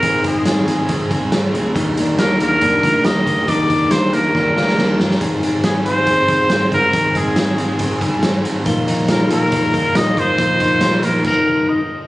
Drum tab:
CC |----------------|----------------|----------------|----------------|
HH |x-x-x-x-x-x-x-x-|x-x-x-x-x-x-x-x-|x-x-x-x---------|x-x-x-x-x-x-x-x-|
SD |----o-------o---|----o-------o---|----o---o-ooo-oo|----o-------o---|
BD |o-o-----o-o-----|o-------o-o---o-|o-o-----o-------|o-------o-o---o-|

CC |----------------|----------------|--------x-------|
HH |x-x-x-x-x-x-x-x-|x-x-x-x-x-x-x-x-|x-x-x-x---------|
SD |----o-------o---|----o-------o---|----o-----------|
BD |o-o-----o-o-----|o-------o-o---o-|o-o-----o-------|